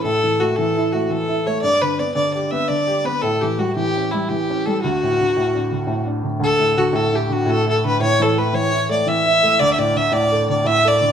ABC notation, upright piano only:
X:1
M:9/8
L:1/8
Q:3/8=113
K:D
V:1 name="Upright piano" clef=bass
A,, E, A, E, E A, E, E A, | G,, D, B, D, G B, D, G B, | A,, E, G, E, C G, E, C G, | D,, A,, D, A,, D D, A,, D D, |
D,, A,, D, A,, E D, A,, E D, | A,, E, A, E, E A, E, E A, | D,, A,, D, A,, A D, A,, A D, |]